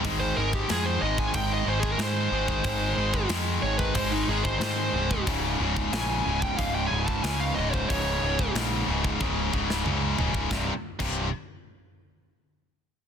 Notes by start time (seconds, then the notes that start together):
0.04 G#1 G#2 D#3 G#3, kick, open hi-hat
0.20 C5
0.36 G#1 G#2 D#3 G#3 A#4
0.53 G4, kick
0.69 F2 G#2 D#3 G#3 G#4, snare, open hi-hat
0.86 C5
1.02 G#1 G#2 D#3 G#3 D#5
1.18 G#5, kick
1.34 G#1 G#2 D#3 G#3 G5, kick, open hi-hat
1.53 D#5
1.66 G#1 G#2 D#3 G#3 C5
1.80 G#4, kick
1.92 A#4
1.98 G#2 D#3 G#3, snare, open hi-hat
2.03 C5
2.31 G#1 G#2 D#3 G#3
2.48 kick
2.64 G#1 G#2 D#3 G#3, kick, open hi-hat
2.97 G#1 G#2 D#3 G#3
3.14 kick
3.29 F2 G#2 D#3 G#3, snare, open hi-hat
3.62 G#1 G#2 D#3 G#3 C#5
3.78 B4, kick
3.95 G#1 G#2 D#3 G#3 C5, kick, open hi-hat
4.11 D#4
4.28 G#1 G#2 D#3 G#3 G#4
4.43 C5, kick
4.59 G#2 C5, snare, open hi-hat
4.63 D#3 G#3
4.93 C1 G#2 D#3 G#3
5.11 kick
5.27 C#1 C#2 G#2 C#3, kick, open hi-hat
5.60 C#1 C#2 G#2 C#3
5.77 kick
5.93 A#1 C#2 G#2 C#3 G#5, snare, open hi-hat
6.26 C#1 C#2 G#2 C#3
6.42 G5, kick
6.58 C#1 C#2 G#2 C#3 F5, kick, open hi-hat
6.75 G5
6.87 C#1 G#5
6.92 C#2 G#2 C#3
7.06 A5, kick
7.23 C#2 G#2 G#5, snare, open hi-hat
7.27 C#3
7.40 F5
7.55 C#1 C#2 G#2 D#5
7.59 C#3
7.72 C5, kick
7.89 C#1 C#2 G#2 C#3 C#5, kick, open hi-hat
8.22 C#1 C#2 G#2 C#3
8.39 kick
8.55 A#1 C#2 G#2 C#3, snare, open hi-hat
8.88 C#1 C#2 G#2 C#3
9.04 kick
9.20 C#1 C#2 G#2 C#3, kick, high tom
9.53 C#1 C#2 G#2 C#3, kick
9.70 snare
9.85 C#2 G#2 C#3, mid tom
10.17 C#1 C#2 G#2 C#3, floor tom
10.35 kick
10.50 C1 C2 G2 C3, kick, snare
10.99 C1 C2 G2 C3, kick, crash